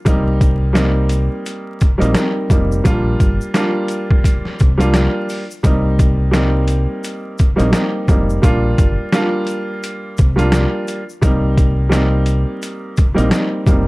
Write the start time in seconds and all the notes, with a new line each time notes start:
0.05 C2 G3 A#3 C4 D#4, kick, closed hi-hat, shaker
0.41 kick, closed hi-hat, shaker
0.73 G3 A#3 C4 D#4, snare, closed hi-hat, shaker
1.09 closed hi-hat, shaker
1.46 closed hi-hat, shaker
1.81 kick, closed hi-hat, shaker
1.98 A#1 G3 A#3 C4 D#4, closed hi-hat, shaker
2.13 G3 A#3 C4 D#4, snare, closed hi-hat, shaker
2.50 F1 G3 A#3 C4 D#4, kick, closed hi-hat, shaker
2.72 shaker
2.84 A#1 G3 A#3 D4 F4, kick, closed hi-hat, shaker
3.20 G1, kick, closed hi-hat, shaker
3.41 shaker
3.54 G3 A#3 D4 F4, snare, closed hi-hat, shaker
3.88 closed hi-hat, shaker
4.11 kick
4.24 kick, closed hi-hat, shaker
4.45 snare
4.59 C2, kick, closed hi-hat, shaker
4.78 G3 A#3 D4 F4, closed hi-hat, shaker
4.94 snare, closed hi-hat, shaker
5.29 open hi-hat, shaker
5.51 shaker
5.63 C2 G3 A#3 C4 D#4, kick, closed hi-hat, shaker
5.99 kick, closed hi-hat, shaker
6.31 G3 A#3 C4 D#4, snare, closed hi-hat, shaker
6.68 closed hi-hat, shaker
7.04 closed hi-hat, shaker
7.38 kick, closed hi-hat, shaker
7.56 G3 A#3 C4 D#4, closed hi-hat, shaker
7.60 A#1
7.71 G3 A#3 C4 D#4, snare, closed hi-hat, shaker
8.08 F1 G3 A#3 C4 D#4, kick, closed hi-hat, shaker
8.30 shaker
8.42 A#1 G3 A#3 D4 F4, kick, closed hi-hat, shaker
8.78 G1, kick, closed hi-hat, shaker
9.12 G3 A#3 D4 F4, snare, closed hi-hat, shaker
9.47 closed hi-hat, shaker
9.83 closed hi-hat, shaker
10.17 C2, kick, closed hi-hat, shaker
10.36 G3 A#3 D4 F4, closed hi-hat, shaker
10.52 snare, closed hi-hat, shaker
10.88 closed hi-hat, shaker
11.09 shaker
11.21 C2 G3 A#3 C4 D#4, kick, closed hi-hat, shaker
11.58 kick, closed hi-hat, shaker
11.89 G3 A#3 C4 D#4, snare, closed hi-hat, shaker
12.26 closed hi-hat, shaker
12.62 closed hi-hat, shaker
12.97 kick, closed hi-hat, shaker
13.14 A#1 G3 A#3 C4 D#4, closed hi-hat, shaker
13.29 G3 A#3 C4 D#4, snare, closed hi-hat, shaker
13.66 F1 G3 A#3 C4 D#4, kick, closed hi-hat, shaker